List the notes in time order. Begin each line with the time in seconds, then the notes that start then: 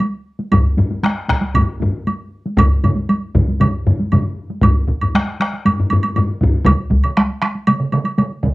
0.00 taiko high, high woodblock
0.39 taiko high
0.52 taiko, taiko low-mid, taiko high, high woodblock
0.77 taiko low-mid, taiko high
0.91 taiko high
1.03 taiko rim, taiko high, high woodblock
1.28 taiko rim, taiko, taiko high
1.42 taiko high
1.55 taiko, taiko low-mid, taiko high, high woodblock
1.80 taiko low-mid, taiko high
2.07 taiko high, high woodblock
2.46 taiko high
2.57 taiko, taiko low-mid, taiko mid, taiko high, high woodblock
2.84 taiko low-mid, taiko mid, taiko high, high woodblock
2.96 taiko high
3.09 taiko high, high woodblock
3.35 taiko, taiko low-mid, taiko mid, taiko high
3.48 taiko high
3.60 taiko, taiko low-mid, taiko mid, taiko high, high woodblock
3.87 taiko low-mid, taiko mid, taiko high
3.99 taiko high
4.12 taiko low-mid, taiko mid, taiko high, high woodblock
4.50 taiko high
4.61 taiko, taiko low-mid, taiko high, high woodblock
4.77 taiko high
4.88 taiko
5.01 taiko low-mid, taiko high, high woodblock
5.15 taiko rim, taiko high, high woodblock
5.27 taiko high
5.40 taiko rim, taiko high, high woodblock
5.53 taiko high
5.65 taiko low-mid, taiko high, high woodblock
5.78 taiko low-mid, taiko high
5.90 taiko low-mid, taiko high, high woodblock
6.03 taiko high, high woodblock
6.16 taiko low-mid, taiko high, high woodblock
6.29 taiko high
6.41 taiko, taiko low-mid, taiko high
6.54 taiko high
6.65 taiko, taiko mid, taiko high, high woodblock
6.80 taiko high
6.91 taiko, taiko high
7.04 taiko mid, high woodblock
7.17 taiko rim, taiko high, high woodblock
7.31 taiko high
7.42 taiko rim, taiko high, high woodblock
7.55 taiko high
7.67 taiko mid, taiko high, high woodblock
7.80 taiko mid, taiko high
7.92 taiko mid, taiko high, high woodblock
8.05 taiko high, high woodblock
8.18 taiko mid, taiko high, high woodblock
8.30 taiko high
8.43 taiko, taiko mid, taiko high